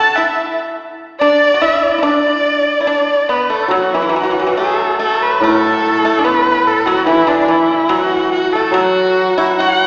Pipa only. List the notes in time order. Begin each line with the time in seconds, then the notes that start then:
Already playing: A4
0.18 E4
1.21 D4
1.54 F#4
1.62 E4
1.98 E4
2.03 D4
2.80 E4
2.87 D4
3.29 B3
3.50 A3
3.71 F#3
3.95 E3
4.02 E3
4.09 E3
4.16 E3
4.24 E3
4.31 E3
4.40 E3
4.47 E3
4.57 A3
4.99 A3
5.44 A3
6.05 A3
6.19 D4
6.25 B3
6.87 F#3
7.07 E3
7.27 D3
7.48 E3
7.89 F#3
8.55 A3
8.74 F#3
9.38 E4
9.60 F#4